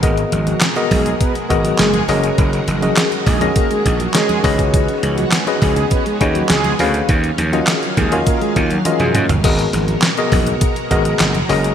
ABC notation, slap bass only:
X:1
M:4/4
L:1/16
Q:1/4=102
K:G#dor
V:1 name="Slap bass" clef=bass
G,,,2 G,,,2 z2 B,,,2 z2 G,,,2 F,,,2 F,,,2 | F,,,2 F,,,2 z2 A,,,2 z2 A,,,2 z2 C,,2- | C,,2 C,,2 z2 C,,2 z2 D,,2 C,,2 =D,,2 | D,,2 D,,2 z2 D,,2 z2 D,,2 z F,, F,, =G,,, |
G,,,2 G,,,2 z2 B,,,2 z2 G,,,2 F,,,2 F,,,2 |]